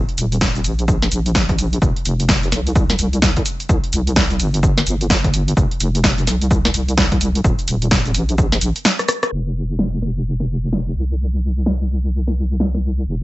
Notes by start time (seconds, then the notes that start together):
0.09 closed hi-hat
0.18 D#1, open hi-hat, shaker
0.32 closed hi-hat, shaker
0.41 kick, snare, shaker
0.55 closed hi-hat, shaker
0.64 A#1, open hi-hat, shaker
0.79 closed hi-hat, shaker
0.88 kick, shaker
1.02 snare, shaker
1.12 A#1, open hi-hat, shaker
1.26 closed hi-hat, shaker
1.35 kick, snare, shaker
1.49 kick, closed hi-hat
1.59 open hi-hat, shaker
1.73 closed hi-hat, shaker
1.82 F1, kick, shaker
1.96 closed hi-hat
2.05 F1, open hi-hat, shaker
2.20 closed hi-hat, shaker
2.29 kick, snare, shaker
2.43 closed hi-hat, shaker
2.52 C2, snare, open hi-hat, shaker
2.67 closed hi-hat, shaker
2.76 kick, shaker
2.90 snare, shaker
2.99 C2, open hi-hat, shaker
3.13 closed hi-hat, shaker
3.22 kick, snare, shaker
3.37 kick, closed hi-hat
3.46 open hi-hat, shaker
3.60 closed hi-hat, shaker
3.69 C2, kick, shaker
3.84 closed hi-hat
3.93 C2, open hi-hat, shaker
4.07 closed hi-hat, shaker
4.16 kick, snare, shaker
4.30 closed hi-hat, shaker
4.40 G1, open hi-hat, shaker
4.54 closed hi-hat, shaker
4.63 kick, shaker
4.78 snare, shaker
4.87 G1, open hi-hat, shaker
5.01 closed hi-hat, shaker
5.10 kick, snare, shaker
5.24 kick, closed hi-hat
5.34 open hi-hat, shaker
5.48 closed hi-hat, shaker
5.57 F1, kick, shaker
5.71 closed hi-hat
5.80 F1, open hi-hat, shaker
5.95 closed hi-hat, shaker
6.04 kick, snare, shaker
6.18 closed hi-hat, shaker
6.27 C2, snare, open hi-hat, shaker
6.42 closed hi-hat, shaker
6.51 kick, shaker
6.65 snare, shaker
6.74 C2, open hi-hat, shaker
6.88 closed hi-hat, shaker
6.98 kick, snare, shaker
7.12 kick, closed hi-hat
7.21 open hi-hat, shaker
7.35 closed hi-hat, shaker
7.44 D#1, kick, shaker
7.59 closed hi-hat, shaker
7.68 D#1, open hi-hat, shaker
7.82 closed hi-hat, shaker
7.91 kick, snare, shaker
8.06 closed hi-hat, shaker
8.14 A#1, open hi-hat, shaker
8.29 closed hi-hat, shaker
8.38 kick, shaker
8.52 snare, shaker
8.61 A#1, open hi-hat, shaker
8.76 closed hi-hat, shaker
8.85 snare, shaker
8.99 cross-stick, closed hi-hat, shaker
9.08 cross-stick, open hi-hat, shaker
9.23 cross-stick, closed hi-hat, shaker
9.32 F1
9.79 snare
10.02 snare
10.40 snare
10.73 snare
10.96 C2
11.66 snare
12.28 snare
12.60 snare
12.74 snare
13.07 F1